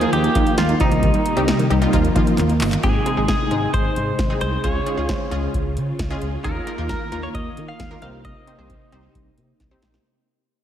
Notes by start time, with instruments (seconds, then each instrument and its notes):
Already playing: string machine D#3 A#3 F4, clean electric guitar G#4
0.01 synth pluck F3 A#3 D#4 F4, synth arpeggio sound A#3, closed hi-hat
0.13 analog synth bass D#2, synth arpeggio sound D#4, clean electric guitar G4, closed hi-hat
0.24 closed hi-hat
0.35 analog synth bass D#3, synth arpeggio sound D#3, synth pluck F3 A#3 D#4 F4, kick, closed hi-hat
0.47 synth arpeggio sound F3, closed hi-hat
0.58 analog synth bass D#2, synth arpeggio sound A#3, clean electric guitar F4, snare, closed hi-hat
0.69 synth arpeggio sound D#4, closed hi-hat
0.80 analog synth bass C2, string machine C3 A#3 D#4, synth pluck G3 C4 D#4 G4, synth arpeggio sound D#4, clean electric guitar D#4, kick, closed hi-hat
0.92 synth arpeggio sound D#3, closed hi-hat
1.03 synth arpeggio sound D#3, kick, closed hi-hat
1.14 synth arpeggio sound G3, closed hi-hat
1.26 closed hi-hat
1.37 analog synth bass C2, synth pluck G3 C4 D#4 G4, synth arpeggio sound C4, closed hi-hat
1.48 snare, closed hi-hat
1.59 synth arpeggio sound D#3, closed hi-hat
1.70 analog synth bass C2, synth pluck G3 C4 D#4 G4, closed hi-hat
1.82 synth pluck G3 C4 D#4 F4, synth arpeggio sound A#3, closed hi-hat
1.93 analog synth bass D#2, string machine D#3 F4, synth pluck F3 A#3 D#4 F4, synth arpeggio sound D#4, kick, closed hi-hat
2.05 closed hi-hat
2.16 synth arpeggio sound D#3, analog synth bass D#3, synth pluck F3 A#3 D#4 F4, kick, closed hi-hat
2.27 synth arpeggio sound F3, closed hi-hat
2.38 analog synth bass D#2, synth arpeggio sound A#3, clap, closed hi-hat
2.49 synth arpeggio sound D#4, closed hi-hat
2.61 analog synth bass G1, synth arpeggio sound D#5, clap, open hi-hat
2.72 synth arpeggio sound D#3, clap, closed hi-hat
2.83 analog synth bass G#1, string machine C3 G#3 D#4, synth pluck G#3 C4 D#4 G#4, clean electric guitar G#4, kick, closed hi-hat
3.06 synth pluck G#3 C4 D#4 G#4, closed hi-hat
3.17 analog synth bass G#1, synth pluck G#3 C4 D#4 G#4
3.28 clean electric guitar G#4, kick, snare, closed hi-hat
3.51 analog synth bass G#1, synth pluck G#3 C4 D#4 G#4, closed hi-hat
3.74 analog synth bass G#1, clean electric guitar C5, kick, closed hi-hat
3.96 analog synth bass G#2, closed hi-hat
4.19 analog synth bass G#1, kick, snare, closed hi-hat
4.30 synth pluck G#3 C4 D#4 G#4
4.41 analog synth bass C2, clean electric guitar C5, closed hi-hat
4.64 analog synth bass C#2, string machine C#3 C#4 F4, synth pluck G#3 C#4 F4 G#4, clean electric guitar C#5, kick, closed hi-hat
4.86 synth pluck G#3 C#4 F4 G#4, closed hi-hat
4.98 analog synth bass C#2, synth pluck G#3 C#4 F4 G#4
5.09 clean electric guitar C5, kick, snare, closed hi-hat
5.31 analog synth bass C#2, synth pluck G#3 C#4 F4 G#4, closed hi-hat
5.54 analog synth bass C#2, kick, closed hi-hat
5.77 analog synth bass C#3, closed hi-hat
5.99 analog synth bass C#2, kick, snare, closed hi-hat
6.11 synth pluck G#3 C#4 F4 G#4
6.22 analog synth bass C#2, closed hi-hat
6.44 analog synth bass D#2, string machine D#3 A#3, synth pluck A#3 D#4 F4 A#4, clean electric guitar A#4, kick, closed hi-hat
6.67 synth pluck A#3 D#4 F4 A#4, closed hi-hat
6.78 analog synth bass D#2, synth pluck A#3 D#4 F4 A#4
6.89 clean electric guitar A#4, kick, snare, closed hi-hat
7.12 analog synth bass D#2, synth pluck A#3 D#4 F4 A#4, closed hi-hat
7.23 clean electric guitar C#5
7.35 analog synth bass D#2, clean electric guitar D#5, kick, closed hi-hat
7.57 analog synth bass D#3, closed hi-hat
7.68 clean electric guitar F5
7.80 analog synth bass D#2, kick, snare, closed hi-hat
7.91 synth pluck A#3 D#4 F4 A#4
8.02 analog synth bass C2, string machine C3 D#4, synth pluck C4 D#4 G4 C5, clean electric guitar F5, closed hi-hat
8.25 clean electric guitar D#5, kick, closed hi-hat
8.47 synth pluck C4 D#4 G4 C5, closed hi-hat
8.59 analog synth bass C2, synth pluck C4 D#4 G4 C5
8.70 kick, closed hi-hat
8.92 analog synth bass C2, synth pluck C4 D#4 G4 C5, closed hi-hat
9.15 analog synth bass C2, kick, closed hi-hat
9.38 analog synth bass C3, closed hi-hat
9.60 analog synth bass C2, kick, snare, closed hi-hat
9.71 synth pluck C4 D#4 G4 C5
9.82 analog synth bass A#1, snare, closed hi-hat
9.94 snare